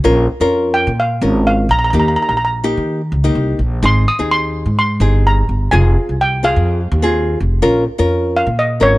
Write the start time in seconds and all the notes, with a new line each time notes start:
0.04 A#1 C#4 F4 A#4
0.40 F2 C#4 F4 A#4
0.74 G5
0.87 A#2
1.00 F5
1.21 G#1 C#4 F4 A#4
1.47 F5
1.69 A#1 A#5
1.79 A#5
1.84 A#5
1.90 D#2 A#3 D#4 G4 A#5
1.99 A#5
2.08 A#5
2.16 A#5
2.22 A#5
2.29 A#1 A#5
2.37 A#5
2.45 A#5
2.64 A#3 D#4 G4
2.77 D#3
3.12 C#2
3.24 A#3 D#4 G4
3.35 C2
3.59 A#1
3.83 G#1 C4 D#4 G#4 C6
4.08 D#6
4.19 D#2 C4 D#4 G#4
4.31 C6
4.66 G#2
4.79 C6
5.00 G1 C4 D#4 G#4
5.27 A#5
5.49 G1
5.71 F1 C4 F4 G#4 G#5
6.09 C2
6.21 G5
6.43 C4 F4 G#4 F5
6.56 F2
6.92 D#2
7.02 C4 F4 G#4
7.40 F1
7.62 A#1 C#4 F4 A#4
7.98 F2 C#4 F4 A#4
8.37 F5
8.47 A#2
8.59 D#5
8.80 G#1 C#4 F4 A#4 C#5